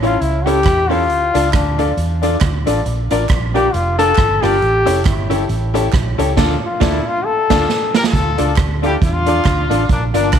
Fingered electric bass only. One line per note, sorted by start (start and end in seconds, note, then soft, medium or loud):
0.00 0.16 A1 medium
0.21 0.66 C#2 medium
0.66 1.09 E2 loud
1.09 1.31 D2 loud
1.35 1.51 C#2 medium
1.53 1.91 D2 medium
1.97 2.35 E2 loud
2.41 2.63 D2 medium
2.67 2.83 A1 medium
2.86 3.07 A#1 loud
3.12 3.27 A1 medium
3.30 3.67 A#1 medium
3.74 4.11 F1 loud
4.18 4.39 G1 medium
4.43 4.59 G1 medium
4.62 4.83 A1 loud
4.87 5.06 F1 loud
5.06 5.43 G1 loud
5.49 5.87 A1 loud
5.93 6.15 A#1 loud
6.18 6.34 C#2 medium
6.38 6.55 D2 loud
6.82 6.99 D2 loud
7.50 7.63 D2 loud
8.13 8.35 D2 loud
8.39 8.55 C#2 medium
8.58 8.95 D2 medium
9.02 9.39 E2 loud
9.45 9.67 D2 medium
9.70 9.86 A1 medium
9.89 10.11 A#1 loud
10.14 10.30 G1 medium
10.33 10.39 A1 medium